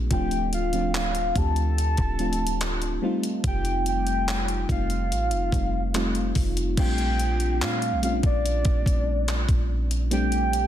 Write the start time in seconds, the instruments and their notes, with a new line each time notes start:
Already playing: fm electric piano G3 A#3 C4 D4 F4 G4
0.11 808-style bass D1, fm electric piano F3 A3 C4 D4 F4, soft synth lead G5, kick, closed hi-hat
0.31 closed hi-hat
0.53 soft synth lead F5, closed hi-hat
0.73 fm electric piano F3 A3 C4 D4 F4, closed hi-hat
0.94 soft synth lead F5, clap, closed hi-hat
1.15 closed hi-hat
1.36 808-style bass D2, fm electric piano F3 A3 C4 D4 G4, soft synth lead A5, kick, closed hi-hat
1.56 closed hi-hat
1.78 closed hi-hat
1.97 808-style bass D1, kick, closed hi-hat
2.19 fm electric piano F3 A3 C4 D4 F4, closed hi-hat
2.33 closed hi-hat
2.47 closed hi-hat
2.61 clap, closed hi-hat
2.82 closed hi-hat
3.02 fm electric piano G3 A3 C4 D#4 F4
3.23 closed hi-hat
3.44 808-style bass F1, soft synth lead G5, kick, closed hi-hat
3.65 closed hi-hat
3.86 soft synth lead G5, closed hi-hat
4.07 closed hi-hat
4.28 clap, closed hi-hat
4.48 closed hi-hat
4.69 808-style bass F1, fm electric piano G3 A3 C4 D#4 F4, soft synth lead F5, kick, closed hi-hat
4.90 closed hi-hat
5.11 808-style bass A1, closed hi-hat
5.31 808-style bass F1, closed hi-hat
5.52 808-style bass F1, fm electric piano G3 A3 C4 D#4 F4, kick, closed hi-hat
5.94 fm electric piano G3 A3 C4 D#4 F4, clap, closed hi-hat
6.15 closed hi-hat
6.35 808-style bass F1, kick, open hi-hat
6.57 closed hi-hat
6.77 808-style bass A#1, fm electric piano G3 A3 C4 D4 F4, soft synth lead G5, kick, closed hi-hat, crash
6.98 closed hi-hat
7.20 closed hi-hat
7.40 closed hi-hat
7.61 808-style bass A#2, soft synth lead F5, clap, closed hi-hat
7.82 closed hi-hat
7.92 808-style bass A#1
8.02 fm electric piano G3 A3 C4 C#4 F4, soft synth lead F5, closed hi-hat
8.10 fm electric piano D4
8.23 808-style bass A#1, soft synth lead D5, kick, closed hi-hat
8.46 closed hi-hat
8.65 808-style bass A#1, kick, closed hi-hat
8.86 808-style bass A#1, kick, closed hi-hat
9.28 clap, closed hi-hat
9.48 808-style bass A#1, kick, closed hi-hat
9.91 closed hi-hat
10.11 fm electric piano G3 A3 C4 D4 G4, soft synth lead G5, closed hi-hat
10.32 closed hi-hat
10.53 closed hi-hat